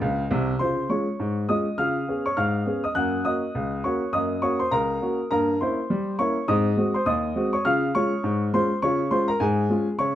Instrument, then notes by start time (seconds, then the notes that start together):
grand piano
Already playing: C5 D#5
0.01 C#2 C#3
0.31 C2 C3
0.59 C#3 F4 C5 C6
0.89 G#3 C#4 F4 C#5 C#6
1.20 G#2
1.49 G#3 C#4 F4 D#5 D#6
1.78 C#3 F4 F5 F6
2.08 B3 C#4 G#4
2.26 C#5 C#6
2.37 G#2 F5 F6
2.66 B3 C#4 G#4
2.84 D#5 D#6
2.95 F#2 A#3 F#5 F#6
3.25 A#3 C#4 F#4 D#5 D#6
3.55 C#2
3.84 A#3 C#4 F#4 C#5 C#6
4.13 F#2 A#3 D#5 D#6
4.42 A#3 C#4 F#4 C#5 C#6
4.59 C5 C6
4.71 C#2 A#4 A#5
5.02 A#3 C#4 F#4
5.31 G2 A#3 A#4 A#5
5.61 A#3 C#4 E4 C5 C6
5.90 G3
6.19 A#3 C#4 E4 C#5 C#6
6.48 G#2 C4 D#5 D#6
6.77 G#3 C4 F#4
6.94 C5 C6
7.06 D#2 D#5 D#6
7.36 G#3 C4 F#4
7.53 C#5 C#6
7.65 C#3 F4 F5 F6
7.95 G#3 C#4 F4 C#5 C#6
8.24 G#2
8.53 G#3 C#4 F4 C5 C6
8.82 C#3 F4 C#5 C#6
9.11 G#3 C#4 F4 C5 C6
9.28 A#4 A#5
9.40 G#2 G#4 G#5
9.70 G#3 C#4 F4
9.99 C#3 C#5 C#6